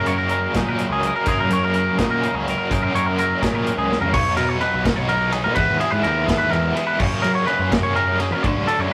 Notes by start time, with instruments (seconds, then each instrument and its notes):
Already playing: overdriven electric guitar F#2 C#3 F#3 A#3 C#4, clean electric guitar F#2 F#3 D#4
0.06 picked electric bass F#2, clean electric guitar A#4 C#5, closed hi-hat
0.18 clean electric guitar A#4
0.29 clean electric guitar F#3 A#4, closed hi-hat
0.53 overdriven electric guitar F#2 C#3 F#3 A#3 C#4, picked electric bass A#2, clean electric guitar G#4, kick, snare, closed hi-hat
0.58 clean electric guitar D#4
0.69 clean electric guitar A#4
0.79 clean electric guitar C#3, closed hi-hat
0.90 picked electric bass C#2, clean electric guitar G#4
1.03 closed hi-hat
1.07 clean electric guitar A#4
1.16 clean electric guitar A#4
1.26 overdriven electric guitar F#2 C#3 F#3 A#3 C#4, picked electric bass F#2, clean electric guitar G#4, kick, closed hi-hat
1.30 clean electric guitar F#2 A#4
1.40 clean electric guitar A#4
1.50 picked electric bass F#2, clean electric guitar C#5, closed hi-hat
1.55 clean electric guitar A#4
1.64 clean electric guitar A#4
1.74 clean electric guitar F#3 A#4, closed hi-hat
1.98 overdriven electric guitar F#2 C#3 F#3 A#3 C#4, picked electric bass A#2, clean electric guitar G#4, kick, snare, closed hi-hat
2.03 clean electric guitar D#4
2.11 clean electric guitar A#4
2.24 clean electric guitar C#3, closed hi-hat
2.34 picked electric bass C#2, clean electric guitar G#4
2.48 clean electric guitar A#4, closed hi-hat
2.58 clean electric guitar A#4
2.70 clean electric guitar F#2 G#4 A#4, overdriven electric guitar F#2 C#3 F#3 A#3 C#4, picked electric bass F#2, kick, closed hi-hat
2.82 clean electric guitar A#4
2.94 picked electric bass F#2, clean electric guitar A#4 C#5, closed hi-hat
3.06 clean electric guitar A#4
3.18 clean electric guitar F#3 A#4, closed hi-hat
3.42 clean electric guitar F#2 G#4, overdriven electric guitar F#2 C#3 F#3 A#3 C#4, picked electric bass A#2, kick, snare, closed hi-hat
3.55 clean electric guitar A#4
3.67 clean electric guitar G#2, closed hi-hat
3.77 picked electric bass C#2, clean electric guitar G#4
3.92 clean electric guitar A#2, snare
4.01 clean electric guitar A#4, floor tom
4.14 picked electric bass B1, overdriven electric guitar B2 F#3 B3 D#4, clean electric guitar C#5, kick, crash
4.37 picked electric bass B2, overdriven electric guitar B2 F#3 B3 D#4, clean electric guitar A#4, ride
4.49 clean electric guitar C#5
4.61 overdriven electric guitar B2 F#3 B3 D#4, clean electric guitar B4, ride
4.74 picked electric bass B1
4.84 overdriven electric guitar B2 F#3 B3 D#4, clean electric guitar A#4, kick, snare, ride
4.96 clean electric guitar C#5
5.09 overdriven electric guitar B2 F#3 B3 D#4, clean electric guitar A#4, ride
5.32 overdriven electric guitar B2 F#3 B3 D#4, clean electric guitar G#4, ride
5.44 picked electric bass B2, clean electric guitar A#4
5.55 picked electric bass E2, overdriven electric guitar E3 G#3 B3 E4, clean electric guitar B4, kick, ride
5.70 picked electric bass D#2
5.80 overdriven electric guitar E3 G#3 B3 E4, clean electric guitar G#4, ride
5.91 picked electric bass G#2, clean electric guitar B4
6.03 picked electric bass D#2, overdriven electric guitar E3 G#3, clean electric guitar A#4, ride
6.08 overdriven electric guitar B3 E4
6.26 picked electric bass D#2, overdriven electric guitar E3 G#3 B3 E4, clean electric guitar G#4, kick, snare, ride
6.38 clean electric guitar B4
6.50 picked electric bass E2, overdriven electric guitar E3 G#3 B3 E4, clean electric guitar A#4, ride
6.75 overdriven electric guitar E3 G#3 B3 E4, clean electric guitar G#4, ride
6.87 clean electric guitar B4
6.98 picked electric bass F#2, overdriven electric guitar C#3 F#3 A#3 C#4, clean electric guitar C#5, kick, crash
7.22 overdriven electric guitar C#3 F#3 A#3 C#4, picked electric bass F#3, clean electric guitar A#4, ride
7.35 clean electric guitar C#5
7.47 overdriven electric guitar C#3 F#3 A#3 C#4, clean electric guitar B4, ride
7.59 picked electric bass F#2
7.71 overdriven electric guitar C#3 F#3 A#3 C#4, clean electric guitar A#4, kick, snare, ride
7.83 clean electric guitar C#5
7.94 overdriven electric guitar C#3 F#3 A#3 C#4, clean electric guitar A#4, ride
8.19 overdriven electric guitar C#3 F#3 A#3 C#4, clean electric guitar G#4, ride
8.31 picked electric bass F#3, clean electric guitar A#4
8.43 picked electric bass D2, overdriven electric guitar D3 F#3 A3 D4, clean electric guitar C#5, kick, ride
8.55 picked electric bass C#2
8.67 overdriven electric guitar D3 F#3 A3 D4, clean electric guitar A4, ride
8.79 picked electric bass F#2, clean electric guitar C#5